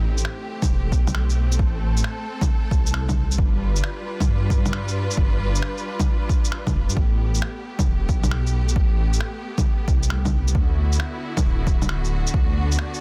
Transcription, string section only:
0.00 3.35 A3 medium
0.00 3.35 C4 medium
0.00 1.58 G4 medium
1.59 3.37 A4 medium
3.38 6.93 G3 medium
3.38 6.93 D4 medium
3.38 6.93 F4 medium
3.38 6.93 B4 medium
6.97 10.51 A3 medium
6.97 13.01 B3 medium
6.97 10.51 G4 medium
10.55 13.01 D3 medium
10.55 12.32 E4 medium
10.55 13.01 F#4 medium
12.34 13.01 D4 medium

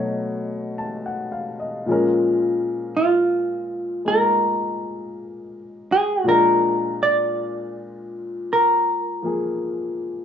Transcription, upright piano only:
0.00 1.86 B2 soft
0.00 1.86 F#3 soft
0.00 1.87 A3 soft
0.00 1.88 D#4 soft
0.00 1.88 C#5 medium
0.00 1.60 D#5 soft
0.78 1.29 A5 soft
1.06 1.52 F#5 soft
1.32 1.65 F5 soft
1.60 1.97 D#5 soft
1.86 6.23 A#2 soft
1.86 6.24 F3 soft
1.86 4.03 G#3 soft
1.91 6.29 C#4 soft
1.91 4.06 A#4 medium
4.05 6.25 G#3 soft
4.05 6.26 A#3 soft
4.05 6.27 D#4 soft
4.05 6.27 A#4 soft
6.24 10.25 A#2 soft
6.24 9.21 F3 soft
6.24 10.25 G#3 soft
6.24 10.25 D4 soft
6.29 10.25 A#4 medium
9.22 10.25 F3 soft
9.22 10.25 A#3 soft
9.22 10.25 G#4 soft

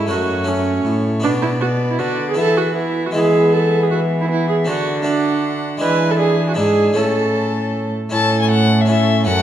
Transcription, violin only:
0.10 0.47 C#5 medium
0.48 1.25 C#5 medium
1.23 1.61 D5 medium
1.62 1.99 D5 medium
2.00 2.39 D5 medium
2.38 2.75 E5 medium
2.76 3.13 E5 medium
3.14 4.27 E5 medium
4.29 4.69 E5 medium
4.67 5.05 F#5 medium
5.05 5.80 F#5 medium
5.81 6.18 G#5 medium
6.19 6.56 G#5 medium
6.57 6.97 G#5 medium
6.95 7.93 A5 medium
8.13 8.39 A5 loud
8.41 8.50 G#5 medium
8.51 8.82 F#5 loud
8.81 8.88 E5 medium
8.88 9.26 E5 loud
9.26 9.42 F#5 loud

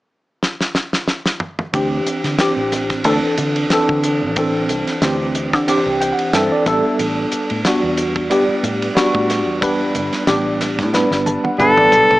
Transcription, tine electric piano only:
1.73 2.35 E3 medium
1.73 2.36 C4 medium
1.73 2.36 D4 medium
1.73 2.36 G4 medium
2.39 3.01 E3 medium
2.39 3.02 C4 medium
2.39 3.02 D4 medium
2.39 3.02 G4 medium
3.05 3.67 E3 medium
3.05 3.68 C4 medium
3.05 3.68 D4 medium
3.05 3.68 A4 medium
3.71 4.33 E3 medium
3.71 4.33 C4 medium
3.71 4.34 D4 medium
3.71 4.34 A4 loud
4.37 4.99 E3 medium
4.37 4.99 C4 medium
4.37 4.99 D4 medium
4.37 5.00 A4 medium
5.02 5.64 E3 medium
5.02 5.65 C4 medium
5.02 5.65 D4 medium
5.02 5.65 G4 medium
5.67 6.30 E3 medium
5.67 6.30 C4 medium
5.67 6.31 D4 medium
5.67 6.31 G4 medium
6.01 6.11 G5 medium
6.12 6.33 F#5 medium
6.34 6.67 E3 medium
6.34 6.67 C4 medium
6.34 6.66 D4 medium
6.34 6.66 A4 medium
6.34 6.51 E5 medium
6.52 6.66 D5 medium
6.66 7.59 G3 medium
6.66 7.60 B3 medium
6.66 7.60 D4 medium
6.66 7.60 A4 medium
6.66 6.97 E5 medium
7.65 8.27 G3 medium
7.65 8.27 B3 medium
7.65 8.28 D4 medium
7.65 8.28 F#4 medium
8.30 8.92 G3 medium
8.30 8.92 B3 medium
8.30 8.93 D4 medium
8.30 8.93 G4 medium
8.95 9.58 G3 medium
8.95 9.58 B3 medium
8.95 9.58 D4 medium
8.95 9.58 F#4 loud
9.61 10.23 G3 medium
9.61 10.24 B3 medium
9.61 10.24 D4 medium
9.61 10.24 B4 medium
10.27 10.89 G3 medium
10.27 10.90 B3 medium
10.27 10.90 D4 medium
10.27 10.90 G4 medium
10.93 11.55 G3 medium
10.93 11.55 B3 medium
10.93 11.56 D4 medium
10.93 11.56 B4 medium
11.26 11.43 A5 medium
11.44 11.58 F#5 medium
11.58 12.20 G3 medium
11.58 12.20 B3 medium
11.58 12.20 D4 medium
11.58 12.20 B4 medium
11.58 11.76 E5 medium
11.78 12.20 D5 medium

